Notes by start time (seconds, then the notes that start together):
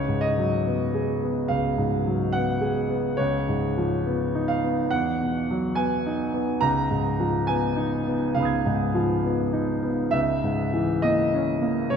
Already playing: C#2 C#5
0.08 G#2
0.21 D#5
0.38 F#3
0.67 B3
0.95 G#4
1.22 B3
1.48 C#2 F5
1.78 G#2
2.06 F#3
2.32 B3 F#5
2.61 G#4
2.90 B3
3.17 C#2 C#5
3.49 G#2
3.78 F3
4.07 B3
4.35 D#4
4.48 F5
4.64 B3
4.91 E2 F#5
5.20 B2
5.50 F#3
5.75 B3 G#5
6.06 D#4
6.34 B3
6.61 C#2 A#5
6.90 G#2
7.20 F3
7.47 B3 G#5
7.76 D#4
8.06 B3
8.35 C#2 F5
8.39 B5 D#6
8.45 G#6
8.66 G#2
8.95 F3
9.24 B3
9.53 D#4
9.82 B3
10.11 C#2 E5
10.44 G#2
10.74 E3
11.02 A#3 D#5
11.34 C#4
11.62 A#3
11.90 C#2 C#5